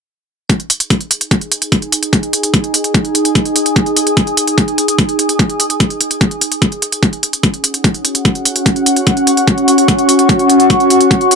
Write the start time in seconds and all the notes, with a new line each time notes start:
0.50 D#4, kick, closed hi-hat
0.60 G#4, closed hi-hat
0.70 closed hi-hat
0.80 closed hi-hat
0.90 kick, closed hi-hat
1.01 closed hi-hat
1.09 G#5, closed hi-hat
1.21 closed hi-hat
1.31 kick, closed hi-hat
1.41 closed hi-hat
1.52 closed hi-hat
1.62 closed hi-hat
1.72 kick, closed hi-hat
1.82 closed hi-hat
1.92 closed hi-hat
2.01 D#6, closed hi-hat
2.13 kick, closed hi-hat
2.23 closed hi-hat
2.33 closed hi-hat
2.43 closed hi-hat
2.54 kick, closed hi-hat
2.64 closed hi-hat
2.74 closed hi-hat
2.84 closed hi-hat
2.94 kick, closed hi-hat
3.05 closed hi-hat
3.15 closed hi-hat
3.25 closed hi-hat
3.35 kick, closed hi-hat
3.45 closed hi-hat
3.56 closed hi-hat
3.66 closed hi-hat
3.76 kick, closed hi-hat
3.86 closed hi-hat
3.97 closed hi-hat
4.07 closed hi-hat
4.17 kick, closed hi-hat
4.27 closed hi-hat
4.37 closed hi-hat
4.48 closed hi-hat
4.58 kick, closed hi-hat
4.68 closed hi-hat
4.78 closed hi-hat
4.88 closed hi-hat
4.99 kick, closed hi-hat
5.09 closed hi-hat
5.19 closed hi-hat
5.29 closed hi-hat
5.39 kick, closed hi-hat
5.50 closed hi-hat
5.60 closed hi-hat
5.70 closed hi-hat
5.80 kick, closed hi-hat
5.90 closed hi-hat
6.01 closed hi-hat
6.11 closed hi-hat
6.21 kick, closed hi-hat
6.31 closed hi-hat
6.41 closed hi-hat
6.52 closed hi-hat
6.62 kick, closed hi-hat
6.72 closed hi-hat
6.82 closed hi-hat
6.92 closed hi-hat
7.03 C#4, kick, closed hi-hat
7.13 closed hi-hat
7.23 closed hi-hat
7.33 closed hi-hat
7.42 F#5, kick, closed hi-hat
7.54 F#4, closed hi-hat
7.64 closed hi-hat
7.74 closed hi-hat
7.84 kick, closed hi-hat
7.94 closed hi-hat
8.05 closed hi-hat
8.15 closed hi-hat
8.25 kick, closed hi-hat
8.31 C#6
8.35 closed hi-hat
8.45 closed hi-hat
8.56 closed hi-hat
8.66 kick, closed hi-hat
8.76 closed hi-hat
8.86 closed hi-hat
8.96 closed hi-hat
9.07 kick, closed hi-hat
9.17 closed hi-hat
9.27 closed hi-hat
9.37 closed hi-hat
9.48 kick, closed hi-hat
9.58 closed hi-hat
9.68 closed hi-hat
9.78 closed hi-hat
9.88 kick, closed hi-hat
9.99 closed hi-hat
10.09 closed hi-hat
10.19 closed hi-hat
10.29 kick, closed hi-hat
10.39 closed hi-hat
10.50 closed hi-hat
10.60 closed hi-hat
10.70 kick, closed hi-hat
10.80 closed hi-hat
10.90 closed hi-hat
11.01 closed hi-hat
11.11 kick, closed hi-hat
11.21 closed hi-hat
11.31 closed hi-hat